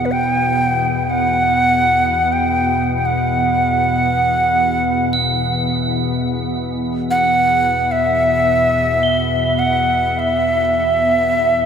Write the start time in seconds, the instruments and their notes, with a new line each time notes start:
Already playing: ambient pad E2 B2
0.05 native american-style wooden flute B4
0.12 native american-style wooden flute G5
1.10 native american-style wooden flute F#5
2.32 native american-style wooden flute G5
2.98 native american-style wooden flute G5
3.06 native american-style wooden flute F#5
5.13 crotales B7
7.11 native american-style wooden flute F#5
7.92 native american-style wooden flute E5
9.03 crotales G7
9.59 native american-style wooden flute F#5
10.19 native american-style wooden flute E5
11.07 ambient pad E2 B2